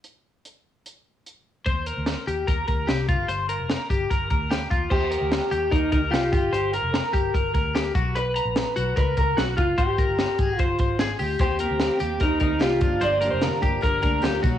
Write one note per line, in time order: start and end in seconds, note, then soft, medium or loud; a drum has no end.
0.04 closed hi-hat soft
0.45 closed hi-hat soft
0.86 closed hi-hat medium
1.26 closed hi-hat soft
1.66 1.92 D#2 medium
1.66 1.87 C5 medium
1.66 kick medium
1.66 closed hi-hat medium
1.86 2.25 A#4 medium
1.86 closed hi-hat medium
1.97 2.14 D2 medium
2.06 snare medium
2.06 closed hi-hat medium
2.27 2.44 D#2 medium
2.27 2.48 G4 medium
2.27 closed hi-hat medium
2.47 2.65 D#2 medium
2.47 2.66 A#4 medium
2.47 kick medium
2.47 closed hi-hat medium
2.68 2.85 D2 medium
2.68 2.88 A#4 medium
2.68 kick medium
2.68 closed hi-hat medium
2.87 3.10 C2 medium
2.87 3.08 G4 medium
2.87 snare loud
2.87 closed hi-hat medium
3.09 3.26 G1 medium
3.09 3.29 F4 medium
3.09 kick loud
3.09 closed hi-hat medium
3.28 3.59 G1 loud
3.28 3.49 C5 medium
3.28 closed hi-hat medium
3.49 3.87 A#4 medium
3.49 closed hi-hat medium
3.59 3.76 F1 medium
3.69 snare medium
3.69 closed hi-hat medium
3.90 4.07 G1 medium
3.90 4.10 G4 medium
3.90 kick medium
3.90 closed hi-hat medium
4.10 4.28 G1 medium
4.10 4.29 A#4 medium
4.10 kick medium
4.10 closed hi-hat medium
4.30 4.65 D2 medium
4.30 4.51 A#4 soft
4.30 kick medium
4.30 closed hi-hat medium
4.51 4.70 G4 medium
4.51 snare medium
4.51 closed hi-hat medium
4.71 4.88 D#2 medium
4.71 4.91 F4 medium
4.71 kick medium
4.71 closed hi-hat medium
4.90 5.17 D#2 medium
4.90 5.75 G4 medium
4.90 5.11 C5 medium
4.90 kick medium
4.90 crash medium
5.11 5.49 A#4 medium
5.11 closed hi-hat medium
5.21 5.39 D2 medium
5.32 snare loud
5.32 closed hi-hat medium
5.51 5.69 D#2 medium
5.51 5.72 G4 medium
5.51 closed hi-hat medium
5.71 5.90 D#2 medium
5.71 5.91 D#4 medium
5.71 5.91 A#4 medium
5.71 kick medium
5.71 closed hi-hat medium
5.92 6.12 D2 medium
5.92 5.98 D#4 medium
5.92 6.13 A#4 medium
5.92 kick medium
5.92 closed hi-hat medium
6.11 6.29 C2 medium
6.11 6.33 F4 medium
6.11 6.32 G4 medium
6.11 snare medium
6.11 closed hi-hat medium
6.32 6.50 G1 medium
6.32 6.53 F4 medium
6.32 6.52 G4 medium
6.32 kick loud
6.32 closed hi-hat medium
6.52 6.79 G1 loud
6.52 6.73 G4 loud
6.52 6.73 C5 medium
6.52 closed hi-hat medium
6.73 7.12 A#4 medium
6.73 6.92 A#4 medium
6.73 closed hi-hat medium
6.82 7.00 F1 medium
6.93 7.50 A#4 medium
6.93 snare loud
6.93 closed hi-hat medium
7.13 7.31 G1 medium
7.13 7.34 G4 medium
7.13 kick medium
7.13 closed hi-hat medium
7.34 7.52 G1 medium
7.34 7.53 A#4 medium
7.34 kick medium
7.34 closed hi-hat medium
7.54 7.89 D2 medium
7.54 7.75 A#4 medium
7.54 kick medium
7.54 closed hi-hat medium
7.75 7.95 G4 medium
7.75 snare medium
7.75 closed hi-hat medium
7.95 8.39 B1 medium
7.95 8.15 F#4 medium
7.95 kick loud
7.95 closed hi-hat medium
8.15 8.35 B4 medium
8.15 8.97 B4 loud
8.15 closed hi-hat medium
8.36 8.74 A#5 medium
8.36 closed hi-hat medium
8.45 8.63 A#1 medium
8.56 snare loud
8.56 closed hi-hat medium
8.76 8.94 B1 loud
8.76 8.97 F#4 medium
8.76 closed hi-hat medium
8.96 9.14 C#2 medium
8.96 9.16 A#4 medium
8.96 9.18 B4 medium
8.96 kick medium
8.96 closed hi-hat medium
9.17 9.35 C#2 medium
9.17 9.37 A#4 medium
9.17 9.39 A#4 loud
9.17 kick medium
9.17 closed hi-hat medium
9.37 9.55 B1 medium
9.37 9.56 F#4 medium
9.37 9.58 F#4 medium
9.37 snare loud
9.37 closed hi-hat medium
9.57 9.75 F#1 medium
9.57 9.77 F4 medium
9.57 kick medium
9.57 closed hi-hat medium
9.78 10.04 G#1 loud
9.78 10.59 G4 medium
9.78 9.98 C5 loud
9.78 kick medium
9.78 closed hi-hat medium
9.98 10.39 A#4 medium
9.98 kick medium
9.98 closed hi-hat medium
10.09 10.26 G1 medium
10.19 snare medium
10.19 closed hi-hat medium
10.39 10.56 G#1 medium
10.39 10.59 G#4 medium
10.39 kick medium
10.39 closed hi-hat medium
10.59 10.77 G1 medium
10.59 10.95 F4 medium
10.59 10.79 C5 medium
10.59 kick medium
10.59 closed hi-hat medium
10.79 11.14 G#1 medium
10.79 11.00 C5 medium
10.79 kick medium
10.79 closed hi-hat medium
10.99 11.19 G#4 medium
10.99 snare loud
10.99 closed hi-hat medium
11.19 11.37 D2 medium
11.19 11.40 G4 medium
11.19 open hi-hat medium
11.39 11.66 D#2 loud
11.39 11.60 D#3 medium
11.39 11.61 A#3 medium
11.39 11.61 C4 medium
11.39 11.59 G4 medium
11.39 12.24 G4 medium
11.39 11.60 C5 medium
11.39 kick loud
11.39 closed hi-hat medium
11.59 11.80 A#3 soft
11.59 11.81 C4 soft
11.59 11.80 G4 soft
11.59 11.98 A#4 medium
11.59 closed hi-hat medium
11.70 11.88 D2 medium
11.80 12.01 D#3 medium
11.80 12.01 A#3 medium
11.80 12.00 C4 medium
11.80 11.98 G4 medium
11.80 snare loud
11.80 closed hi-hat medium
12.00 12.18 D#2 medium
12.00 12.20 A#3 soft
12.00 12.20 C4 medium
12.00 12.21 G4 medium
12.00 closed hi-hat medium
12.20 12.38 D#2 medium
12.20 12.41 D#3 medium
12.20 12.41 A#3 medium
12.20 12.40 C4 medium
12.20 12.41 D#4 medium
12.20 12.38 G4 medium
12.20 12.39 A#4 medium
12.20 kick medium
12.20 closed hi-hat medium
12.40 12.62 D2 medium
12.40 12.58 A#3 soft
12.40 12.59 C4 soft
12.40 12.61 D#4 medium
12.40 12.59 G4 soft
12.40 12.61 A#4 medium
12.40 kick medium
12.40 closed hi-hat medium
12.59 12.79 C2 medium
12.59 12.81 D#3 medium
12.59 12.81 A#3 medium
12.59 12.81 C4 medium
12.59 13.03 F4 medium
12.59 12.81 G4 medium
12.59 12.79 G4 medium
12.59 snare loud
12.59 closed hi-hat medium
12.80 12.99 G1 medium
12.80 13.00 F3 soft
12.80 13.00 A#3 soft
12.80 13.00 D4 soft
12.80 13.02 F4 medium
12.80 13.01 G4 soft
12.80 kick loud
12.80 closed hi-hat medium
13.01 13.28 G1 medium
13.01 13.22 G2 medium
13.01 13.22 D3 medium
13.01 13.22 F3 medium
13.01 13.22 A#3 medium
13.01 13.21 D4 medium
13.01 13.20 G4 medium
13.01 13.20 C5 medium
13.01 13.30 D5 loud
13.01 closed hi-hat medium
13.21 13.41 F3 soft
13.21 13.41 A#3 soft
13.21 13.41 D4 soft
13.21 13.42 G4 medium
13.21 13.60 A#4 medium
13.21 closed hi-hat medium
13.30 13.50 F1 medium
13.30 13.43 C5 medium
13.41 13.62 G2 medium
13.41 13.62 D3 medium
13.41 13.62 F3 medium
13.41 13.62 A#3 medium
13.41 13.61 D4 medium
13.41 13.61 G4 medium
13.41 13.82 A#4 medium
13.41 snare medium
13.41 closed hi-hat medium
13.62 13.80 G1 medium
13.62 13.80 F3 soft
13.62 13.81 A#3 soft
13.62 13.82 D4 soft
13.62 13.83 G4 medium
13.62 kick medium
13.62 closed hi-hat medium
13.81 14.00 G1 medium
13.81 14.02 F3 medium
13.81 14.02 A#3 medium
13.81 14.02 D4 medium
13.81 14.00 G4 medium
13.81 14.02 A#4 medium
13.81 14.40 A#4 medium
13.81 kick medium
13.81 closed hi-hat medium
14.02 14.38 D2 medium
14.02 14.21 F3 soft
14.02 14.21 A#3 soft
14.02 14.22 D4 soft
14.02 14.22 G4 soft
14.02 14.23 A#4 medium
14.02 kick medium
14.02 closed hi-hat medium
14.22 14.43 G2 medium
14.22 14.43 D3 medium
14.22 14.43 F3 medium
14.22 14.43 A#3 medium
14.22 14.42 D4 medium
14.22 14.43 G4 medium
14.22 14.44 G4 medium
14.22 snare loud
14.22 closed hi-hat medium
14.43 14.59 B1 medium
14.43 14.59 F#3 soft
14.43 14.59 A#3 medium
14.43 14.59 D#4 medium
14.43 14.59 F#4 medium
14.43 kick loud
14.43 closed hi-hat medium